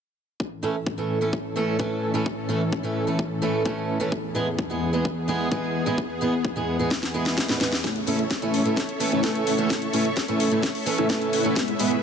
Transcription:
0.40 supersaw synth A2 E3 C#4 A4, kick
0.63 steel-string acoustic guitar E3 A3 C#4 A4
0.86 kick
0.98 steel-string acoustic guitar E3 A3 C#4 A4
1.21 steel-string acoustic guitar E3 A3 C#4 A4
1.33 kick
1.56 steel-string acoustic guitar E3 A3 C#4 A4
1.79 steel-string acoustic guitar E3 A3 C#4 A4, kick
2.14 steel-string acoustic guitar E3 A3 C#4 A4
2.26 kick
2.49 steel-string acoustic guitar E3 A3 C#4 A4
2.72 kick
2.83 steel-string acoustic guitar E3 A3 C#4 A4
3.07 steel-string acoustic guitar E3 A3 C#4 A4
3.19 kick
3.42 steel-string acoustic guitar E3 A3 C#4 A4
3.65 steel-string acoustic guitar E3 A3 C#4 A4, kick
4.00 steel-string acoustic guitar E3 A3 C#4 A4
4.12 supersaw synth E2 B3 G#4, kick
4.35 steel-string acoustic guitar E3 G#3 B3 G#4
4.59 kick
4.70 steel-string acoustic guitar E3 G#3 B3 G#4
4.93 steel-string acoustic guitar E3 G#3 B3 G#4
5.05 kick
5.28 steel-string acoustic guitar E3 G#3 B3 G#4
5.51 steel-string acoustic guitar E3 G#3 B3 G#4, kick
5.86 steel-string acoustic guitar E3 G#3 B3 G#4
5.98 kick
6.21 steel-string acoustic guitar E3 G#3 B3 G#4
6.45 kick
6.56 steel-string acoustic guitar E3 G#3 B3 G#4
6.79 steel-string acoustic guitar E3 G#3 B3 G#4
6.91 kick, snare
7.03 snare
7.14 steel-string acoustic guitar E3 G#3 B3 G#4
7.26 snare
7.38 kick, snare
7.49 steel-string acoustic guitar E3 G#3 B3 B4, snare
7.60 steel-string acoustic guitar E3 G#3 B3 B4, snare
7.72 snare
7.84 analog synth bass A1, supersaw synth A3 C#4 E4 A4 C#5 E5 C#6, kick, snare, closed hi-hat
7.96 closed hi-hat
8.07 analog synth bass A1, steel-string acoustic guitar E3 A3 C#4 A4, supersaw synth A3 C#4 E4 C#5 E5, open hi-hat
8.19 closed hi-hat
8.31 kick, snare, closed hi-hat
8.42 analog synth bass A1, steel-string acoustic guitar E3 A3 C#4 A4, supersaw synth A3 C#4 E4 C#5 A5, closed hi-hat
8.54 open hi-hat
8.65 analog synth bass A1, steel-string acoustic guitar E3 A3 C#4 A4, supersaw synth A3 C#4 E4 C#5 E5, closed hi-hat
8.77 kick, snare, closed hi-hat
8.89 closed hi-hat
9.00 steel-string acoustic guitar E3 A3 C#4 A4, open hi-hat
9.12 analog synth bass A1, supersaw synth A3 C#4 E4 C#5 E5, closed hi-hat
9.23 steel-string acoustic guitar E3 A3 C#4 A4, kick, snare, closed hi-hat
9.35 closed hi-hat
9.47 analog synth bass A1, supersaw synth A3 C#4 E4 C#5 F#5, open hi-hat
9.58 steel-string acoustic guitar E3 A3 C#4 A4, closed hi-hat
9.70 analog synth bass A1, supersaw synth A3 C#4 E4 C#5 E5, kick, snare, closed hi-hat
9.82 closed hi-hat
9.93 analog synth bass A1, steel-string acoustic guitar E3 A3 C#4 A4, supersaw synth A3 C#4 E4 C#5 E5, open hi-hat
10.05 closed hi-hat
10.17 kick, snare, closed hi-hat
10.28 analog synth bass A1, steel-string acoustic guitar E3 A3 C#4 A4, supersaw synth A3 C#4 E4 C#5 A5, closed hi-hat
10.40 open hi-hat
10.51 analog synth bass A1, steel-string acoustic guitar E3 A3 C#4 A4, supersaw synth A3 C#4 E4 C#5 E5, closed hi-hat
10.63 kick, snare, closed hi-hat
10.75 open hi-hat
10.86 steel-string acoustic guitar E3 A3 C#4 A4, open hi-hat
10.98 analog synth bass A1, supersaw synth A3 C#4 E4 C#5 E5, closed hi-hat
11.09 steel-string acoustic guitar E3 A3 C#4 A4, kick, snare, closed hi-hat
11.22 closed hi-hat
11.33 analog synth bass A1, supersaw synth A3 C#4 E4 C#5 F#5, open hi-hat
11.44 steel-string acoustic guitar E3 A3 C#4 A4, closed hi-hat
11.56 analog synth bass E2, supersaw synth G#3 B3 E4 G#4 B4 E5 B5, kick, snare, closed hi-hat
11.68 closed hi-hat
11.79 analog synth bass E2, steel-string acoustic guitar E3 G#3 B3 G#4, supersaw synth G#3 B3 E4 B4 E5, open hi-hat
11.91 closed hi-hat

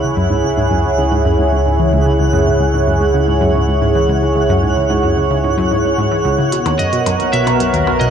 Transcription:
Already playing: synth drone C#2, analog synth pad E4 G#4 C#5, synth texture F#5
0.03 synth arpeggio sound C#2
0.17 synth arpeggio sound F#2
0.30 synth arpeggio sound G#2
0.44 synth arpeggio sound C#2
0.58 synth arpeggio sound G#2
0.71 synth arpeggio sound F#2
0.85 synth arpeggio sound C#2
0.98 synth arpeggio sound C#3
1.11 synth arpeggio sound G#2
1.25 synth arpeggio sound F#2
1.39 synth arpeggio sound G#2
1.52 synth arpeggio sound C#2
1.66 synth arpeggio sound G#2
1.79 synth arpeggio sound E3
1.93 synth arpeggio sound C#2
2.06 synth arpeggio sound C#3
2.20 synth arpeggio sound C#2
2.33 synth arpeggio sound F#2
2.47 synth arpeggio sound G#2
2.60 synth arpeggio sound C#2
2.74 synth arpeggio sound G#2
2.87 synth arpeggio sound F#2
3.01 synth arpeggio sound C#2
3.14 synth arpeggio sound C#3
3.28 synth arpeggio sound G#2
3.41 synth arpeggio sound F#2
3.55 synth arpeggio sound G#2
3.68 synth arpeggio sound C#2
3.82 synth arpeggio sound G#2
3.95 synth arpeggio sound E3
4.09 synth arpeggio sound C#2
4.22 synth arpeggio sound C#3
4.36 synth arpeggio sound C#2
4.49 synth arpeggio sound F#2
4.63 synth arpeggio sound G#2
4.77 synth arpeggio sound C#2
4.90 synth arpeggio sound G#2
5.03 synth arpeggio sound F#2
5.17 synth arpeggio sound C#2
5.30 synth arpeggio sound C#3
5.44 synth arpeggio sound G#2
5.58 synth arpeggio sound F#2
5.71 synth arpeggio sound G#2
5.85 synth arpeggio sound C#2
5.98 synth arpeggio sound G#2
6.11 synth arpeggio sound E3
6.25 synth arpeggio sound C#2
6.39 synth arpeggio sound C#3
6.52 synth drone B1, synth arpeggio sound B2, analog synth pad B3, closed hi-hat
6.61 analog synth pad A#4
6.66 synth arpeggio sound D#2, closed hi-hat, percussion blips
6.70 analog synth pad F#4
6.79 synth arpeggio sound F#2, lead electric guitar D#5, closed hi-hat
6.93 synth arpeggio sound B2, closed hi-hat
7.06 synth arpeggio sound F#2, closed hi-hat, percussion blips
7.16 synth arpeggio sound D#2, analog synth pad F#5, closed hi-hat
7.33 synth arpeggio sound B2, lead electric guitar E5, closed hi-hat
7.47 synth arpeggio sound B2, closed hi-hat, percussion blips
7.60 synth arpeggio sound F#2, closed hi-hat
7.74 synth arpeggio sound D#2, closed hi-hat
7.87 synth arpeggio sound F#2, percussion blips
8.00 synth arpeggio sound B2, lead electric guitar D#5, closed hi-hat

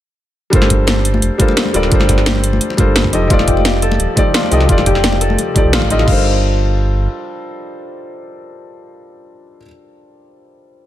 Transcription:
0.50 sub bass G1, felt piano G3 D4 F4 A4, kick, closed hi-hat, muted conga
0.55 felt piano A#4 C5
0.62 snare, high conga
0.70 kick, closed hi-hat
0.87 snare, closed hi-hat, muted conga, high conga
1.05 closed hi-hat
1.14 muted conga, high conga
1.22 sub bass F1, closed hi-hat
1.38 felt piano G3 D4 F4 A4 A#4 C5, kick, closed hi-hat, high conga
1.48 muted conga
1.57 snare, closed hi-hat
1.65 high conga
1.73 sub bass D1, felt piano G3 D4 F4 A4 A#4 D5, closed hi-hat, muted conga
1.83 snare
1.89 sub bass G1, felt piano G3 D4 F4 A4, kick, closed hi-hat
1.94 felt piano A#4 C5
2.00 snare, high conga
2.09 kick, closed hi-hat, muted conga
2.18 snare
2.26 snare, closed hi-hat, high conga
2.36 muted conga
2.44 closed hi-hat
2.53 high conga
2.61 closed hi-hat
2.70 muted conga
2.77 sub bass G1, felt piano G3 D4 F4 A4 A#4 C5, kick, closed hi-hat, high conga
2.96 snare, closed hi-hat, muted conga
3.04 kick, high conga
3.12 sub bass F1, felt piano F3 D#4 G4 A4 D#5, closed hi-hat
3.27 sub bass F1, felt piano F3 D#4 G4, harp F4, kick, closed hi-hat, muted conga
3.32 felt piano A4 D5
3.39 snare, high conga
3.48 harp G4, kick, closed hi-hat
3.57 muted conga
3.65 snare, closed hi-hat, high conga
3.82 harp A4, closed hi-hat
3.91 muted conga, high conga
4.00 sub bass D#1, closed hi-hat
4.16 felt piano F3 D#4 G4 A4 D5, kick, closed hi-hat, muted conga, high conga
4.34 harp F4, snare, closed hi-hat
4.43 high conga
4.50 sub bass C2, felt piano F3 D#4 G4 A4 D#5, harp G4, closed hi-hat, muted conga
4.60 snare
4.66 sub bass F1, felt piano F3 D#4 G4, harp F4, kick, closed hi-hat
4.71 felt piano A4 D5
4.78 snare, muted conga, high conga
4.86 harp G4, kick, closed hi-hat
4.95 snare
5.03 snare, closed hi-hat, high conga
5.13 muted conga
5.21 harp A4, closed hi-hat
5.30 high conga
5.38 closed hi-hat, muted conga
5.54 felt piano F3 D#4 G4 A4 D5, kick, closed hi-hat, high conga
5.64 sub bass C2
5.73 sub bass A1, harp F4, snare, closed hi-hat, muted conga
5.82 kick, high conga
5.89 felt piano F3 D#4 G4 A4 D#5, harp F4, closed hi-hat
5.99 snare, muted conga
6.03 felt piano G3 D4 F4
6.08 sub bass G1, harp F4, felt piano A4 A#4, kick, crash
6.12 felt piano C5

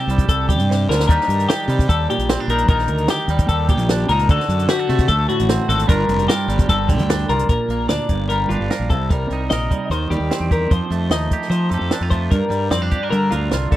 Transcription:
Already playing: clean electric guitar C3 G4
0.00 clean electric guitar A4
0.07 fingered electric bass C2, clean electric guitar G3, closed hi-hat
0.18 kick, closed hi-hat
0.28 fingered electric bass C2, clean electric guitar A4, kick, closed hi-hat
0.49 clean electric guitar G3 G4, kick, closed hi-hat
0.59 fingered electric bass G2, closed hi-hat
0.70 clean electric guitar C3, snare
0.89 fingered electric bass D2, clean electric guitar D3 A#4, snare
1.00 snare
1.08 fingered electric bass D#2, clean electric guitar D#3 G3 D4 D#4 A#4, kick, closed hi-hat
1.12 clean electric guitar G4
1.21 snare
1.28 fingered electric bass G2, closed hi-hat
1.40 closed hi-hat
1.49 clean electric guitar G4, snare, closed hi-hat
1.68 fingered electric bass C3, clean electric guitar G3, closed hi-hat
1.79 kick, closed hi-hat
1.89 fingered electric bass D#2, clean electric guitar A4, kick, closed hi-hat
2.10 clean electric guitar A#2 G4, closed hi-hat
2.18 fingered electric bass A#1, closed hi-hat
2.29 clean electric guitar C4, snare, closed hi-hat
2.40 clean electric guitar D4
2.48 fingered electric bass A#1, clean electric guitar D#4 A#4, closed hi-hat
2.58 closed hi-hat
2.68 fingered electric bass A#1, clean electric guitar D#3 D#4 A#4, kick, closed hi-hat
2.79 snare
2.88 fingered electric bass D2, closed hi-hat
2.98 closed hi-hat
3.08 clean electric guitar G4, snare, closed hi-hat
3.28 fingered electric bass D#2, clean electric guitar G3, closed hi-hat
3.39 kick, closed hi-hat
3.49 fingered electric bass D#2, clean electric guitar A4, kick, closed hi-hat
3.68 clean electric guitar A#2 G4, kick, closed hi-hat
3.79 fingered electric bass A#1, closed hi-hat
3.89 clean electric guitar D4, snare, closed hi-hat
4.09 fingered electric bass C#2, clean electric guitar D#4 A#4, closed hi-hat
4.19 closed hi-hat
4.29 fingered electric bass D2, clean electric guitar D3 F#4 A4, kick, closed hi-hat
4.40 snare
4.48 fingered electric bass F#2, closed hi-hat
4.59 closed hi-hat
4.68 clean electric guitar F#4 G4, snare, closed hi-hat
4.79 clean electric guitar A4
4.89 fingered electric bass C3, clean electric guitar A3, closed hi-hat
4.99 kick, closed hi-hat
5.08 fingered electric bass D2, clean electric guitar A4, kick, closed hi-hat
5.29 clean electric guitar A2 F#4, closed hi-hat
5.39 fingered electric bass A1, closed hi-hat
5.49 clean electric guitar C4, snare, closed hi-hat
5.69 fingered electric bass G#1, clean electric guitar F#4 A4, closed hi-hat
5.79 closed hi-hat
5.87 fingered electric bass G1, clean electric guitar G2 G3 D4 F4 A#4, kick, closed hi-hat
6.09 fingered electric bass F1, closed hi-hat
6.19 closed hi-hat
6.28 clean electric guitar G4 A#4, snare, closed hi-hat
6.48 fingered electric bass G1, clean electric guitar G3, closed hi-hat
6.59 kick, closed hi-hat
6.69 fingered electric bass G1, clean electric guitar A4, kick, closed hi-hat
6.89 clean electric guitar D3 G4, kick, closed hi-hat
6.99 fingered electric bass D2, closed hi-hat
7.10 clean electric guitar D4, snare, closed hi-hat
7.29 fingered electric bass C2, clean electric guitar F4 A#4, closed hi-hat
7.39 closed hi-hat
7.49 fingered electric bass A#1, clean electric guitar A#2 A#4, kick, closed hi-hat
7.68 fingered electric bass A#1, clean electric guitar A#3, closed hi-hat
7.88 fingered electric bass D2, clean electric guitar D4 D5, snare, closed hi-hat
8.09 fingered electric bass G1, clean electric guitar G2, kick, closed hi-hat
8.29 clean electric guitar G3 A#4, closed hi-hat
8.49 fingered electric bass G1, clean electric guitar D4 F4, closed hi-hat
8.60 fingered electric bass G1
8.70 clean electric guitar A#4, snare, closed hi-hat
8.79 fingered electric bass A#1
8.89 fingered electric bass C2, clean electric guitar C3 A4, kick, closed hi-hat
9.10 clean electric guitar G3 A#4, kick, closed hi-hat
9.30 fingered electric bass C2, clean electric guitar D#4, closed hi-hat
9.50 fingered electric bass A#1, clean electric guitar A#4 D#5, snare, closed hi-hat
9.71 clean electric guitar G3, kick, closed hi-hat
9.90 fingered electric bass D#2, clean electric guitar D#3 C5, closed hi-hat
10.10 fingered electric bass D#2, clean electric guitar G3 G4, closed hi-hat
10.20 fingered electric bass D#2
10.31 clean electric guitar C4, snare, closed hi-hat
10.40 fingered electric bass E2
10.51 clean electric guitar G4 A#4, kick, closed hi-hat
10.71 fingered electric bass F2, clean electric guitar F3 C5, kick, closed hi-hat
10.90 fingered electric bass F2, clean electric guitar A3, closed hi-hat
11.10 fingered electric bass D#2, clean electric guitar D#4 D#5, snare, closed hi-hat
11.31 clean electric guitar G4, kick, closed hi-hat
11.42 snare
11.50 fingered electric bass F3, clean electric guitar F3 C5, closed hi-hat
11.70 fingered electric bass F2, clean electric guitar G4 A4, closed hi-hat
11.81 fingered electric bass F2
11.91 clean electric guitar D4, snare, closed hi-hat
12.01 fingered electric bass F2, clean electric guitar F4
12.11 clean electric guitar A3 C5, kick, closed hi-hat
12.31 fingered electric bass G2, clean electric guitar G2 A#4, kick, closed hi-hat
12.50 fingered electric bass G2, clean electric guitar G3, closed hi-hat
12.71 fingered electric bass F2, clean electric guitar C4 D5, snare, closed hi-hat
12.82 clean electric guitar D4
12.91 clean electric guitar G4, kick, closed hi-hat
13.03 clean electric guitar A#4
13.11 clean electric guitar D3 A#4, fingered electric bass G3, closed hi-hat
13.31 fingered electric bass D2, clean electric guitar F4 A#4, closed hi-hat
13.51 fingered electric bass C2, clean electric guitar F4, snare, closed hi-hat
13.71 fingered electric bass A#1, clean electric guitar G3 A4, kick, closed hi-hat

